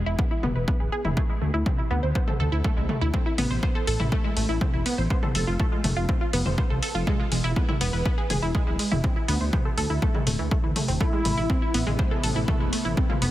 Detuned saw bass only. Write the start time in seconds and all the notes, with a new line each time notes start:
0.06 E1
0.43 E1
0.55 E1
0.80 D1
1.05 E1
1.42 D2
1.54 D2
1.91 D2
2.03 D2
2.40 D2
2.52 D2
2.77 C2
3.01 D2
3.38 A1
3.51 A1
3.87 A1
4.00 A1
4.37 A1
4.49 A1
4.74 E1
4.98 A1
5.35 F1
5.47 F1
5.84 F1
5.96 F1
6.33 F1
6.46 F1
6.70 C2
6.95 F1
7.32 E1
7.44 E1
7.81 E1
7.93 E1
8.30 E1
8.42 E1
8.67 D1
8.92 E1
9.28 D2
9.41 D2
9.78 D2
9.90 D2
10.27 D1
10.39 D2
10.64 D2
10.88 D1
11.25 A1
11.37 A1
11.74 A1
11.87 A1
12.23 A1
12.36 A1
12.60 E1
12.85 A1
13.22 F1